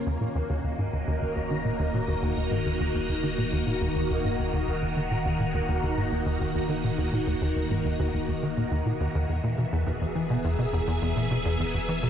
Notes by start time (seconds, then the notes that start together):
Already playing: A#3 C#4
0.06 D#1 D#2 D#3 A#4
0.20 A#2 F#4
0.35 D#2
0.49 D#2
0.64 D#2 D#5
0.78 G#2
0.93 D#2
1.07 D#2
1.14 A#5
1.22 D#2
1.36 D#2
1.51 D#3
1.65 A#2
1.79 D#2
1.94 A#2
2.08 D#2
2.22 D#2
2.37 D#2
2.51 G#2
2.66 D#2
2.80 D#2
2.94 D#2
3.09 D#2
3.23 D#3
3.38 A#2
3.52 D#2
3.67 A#2
3.81 D#2
3.95 D#2
4.10 D#2
4.24 G#2
4.39 D#2
4.53 D#2
4.68 D#2
4.82 D#2
4.96 D#3
5.11 A#2
5.25 D#2
5.39 A#2
5.54 D#2
5.68 D#2
5.83 D#2
5.97 G#2
6.12 D#2
6.26 D#2
6.41 D#2
6.55 D#2
6.69 D#3
6.84 A#2
6.98 D#2
7.13 A#2
7.27 D#2
7.41 D#2
7.56 D#2
7.70 G#2
7.85 D#2
7.99 D#2
8.14 D#2
8.28 D#2
8.43 D#3
8.57 A#2
8.71 D#2
8.85 A#2
9.00 D#2
9.15 D#2
9.29 E1 E2 E3
9.43 A#2 B3
9.58 B2
9.72 E2
9.78 G#4
9.87 E2
10.01 E2
10.15 E3
10.27 B2 E5
10.44 E2
10.59 B2 G#5
10.73 E2
10.87 E2
11.02 E2
11.16 A#2
11.31 B2
11.45 E2
11.60 E2
11.74 E2
11.88 E3
12.03 B2